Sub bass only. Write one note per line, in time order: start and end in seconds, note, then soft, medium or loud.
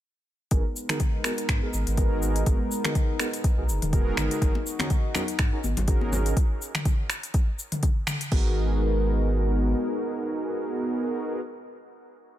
0.51 0.62 G#1 loud
1.49 1.60 G#2 loud
1.73 1.84 G#1 medium
1.87 2.43 G#1 loud
2.46 2.57 G#1 loud
3.58 3.70 B1 loud
3.68 3.79 F#1 medium
3.82 4.14 D#1 medium
4.17 4.28 G#1 medium
4.42 4.53 G#1 loud
5.39 5.50 G#2 loud
5.63 5.74 G#1 medium
5.77 6.33 G#1 loud
8.32 9.74 G#1 loud